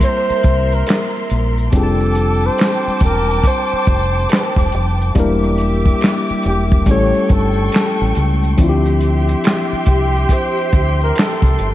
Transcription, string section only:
0, 0, Header, 1, 2, 480
1, 0, Start_track
1, 0, Key_signature, -1, "minor"
1, 0, Tempo, 857143
1, 969, Time_signature, 4, 2, 24, 8
1, 6576, End_track
2, 0, Start_track
2, 0, Title_t, "String section"
2, 0, Program_c, 0, 48
2, 0, Note_on_c, 0, 70, 76
2, 0, Note_on_c, 0, 76, 62
2, 0, Note_on_c, 0, 84, 78
2, 952, Note_off_c, 0, 70, 0
2, 952, Note_off_c, 0, 76, 0
2, 953, Note_off_c, 0, 84, 0
2, 973, Note_on_c, 0, 79, 69
2, 973, Note_on_c, 0, 81, 76
2, 973, Note_on_c, 0, 86, 87
2, 2872, Note_off_c, 0, 79, 0
2, 2872, Note_off_c, 0, 81, 0
2, 2872, Note_off_c, 0, 86, 0
2, 2887, Note_on_c, 0, 67, 70
2, 2887, Note_on_c, 0, 76, 68
2, 2888, Note_on_c, 0, 86, 77
2, 3839, Note_off_c, 0, 67, 0
2, 3839, Note_off_c, 0, 76, 0
2, 3839, Note_off_c, 0, 86, 0
2, 3850, Note_on_c, 0, 69, 70
2, 3850, Note_on_c, 0, 85, 82
2, 3851, Note_on_c, 0, 79, 65
2, 4800, Note_off_c, 0, 69, 0
2, 4800, Note_off_c, 0, 79, 0
2, 4800, Note_off_c, 0, 85, 0
2, 4807, Note_on_c, 0, 67, 82
2, 4808, Note_on_c, 0, 79, 74
2, 4809, Note_on_c, 0, 76, 66
2, 4809, Note_on_c, 0, 84, 84
2, 6576, Note_off_c, 0, 67, 0
2, 6576, Note_off_c, 0, 76, 0
2, 6576, Note_off_c, 0, 79, 0
2, 6576, Note_off_c, 0, 84, 0
2, 6576, End_track
0, 0, End_of_file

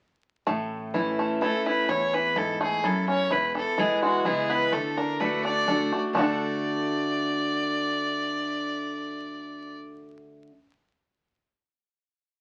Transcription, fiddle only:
0, 0, Header, 1, 2, 480
1, 0, Start_track
1, 0, Tempo, 475059
1, 476, Time_signature, 3, 2, 24, 8
1, 12532, End_track
2, 0, Start_track
2, 0, Title_t, "Fiddle"
2, 0, Program_c, 0, 110
2, 1438, Note_on_c, 0, 69, 90
2, 1667, Note_off_c, 0, 69, 0
2, 1689, Note_on_c, 0, 71, 95
2, 1915, Note_on_c, 0, 73, 93
2, 1930, Note_off_c, 0, 71, 0
2, 2166, Note_on_c, 0, 71, 93
2, 2181, Note_off_c, 0, 73, 0
2, 2401, Note_on_c, 0, 69, 83
2, 2416, Note_off_c, 0, 71, 0
2, 2643, Note_off_c, 0, 69, 0
2, 2651, Note_on_c, 0, 68, 81
2, 2877, Note_on_c, 0, 69, 86
2, 2892, Note_off_c, 0, 68, 0
2, 3113, Note_off_c, 0, 69, 0
2, 3119, Note_on_c, 0, 73, 109
2, 3355, Note_on_c, 0, 71, 90
2, 3370, Note_off_c, 0, 73, 0
2, 3594, Note_off_c, 0, 71, 0
2, 3600, Note_on_c, 0, 69, 91
2, 3829, Note_on_c, 0, 68, 88
2, 3844, Note_off_c, 0, 69, 0
2, 4063, Note_off_c, 0, 68, 0
2, 4069, Note_on_c, 0, 66, 92
2, 4304, Note_on_c, 0, 68, 89
2, 4319, Note_off_c, 0, 66, 0
2, 4548, Note_on_c, 0, 71, 105
2, 4563, Note_off_c, 0, 68, 0
2, 4781, Note_on_c, 0, 69, 88
2, 4796, Note_off_c, 0, 71, 0
2, 5026, Note_on_c, 0, 70, 86
2, 5041, Note_off_c, 0, 69, 0
2, 5255, Note_on_c, 0, 71, 80
2, 5271, Note_off_c, 0, 70, 0
2, 5495, Note_off_c, 0, 71, 0
2, 5501, Note_on_c, 0, 74, 103
2, 6059, Note_off_c, 0, 74, 0
2, 6222, Note_on_c, 0, 74, 90
2, 9876, Note_off_c, 0, 74, 0
2, 12532, End_track
0, 0, End_of_file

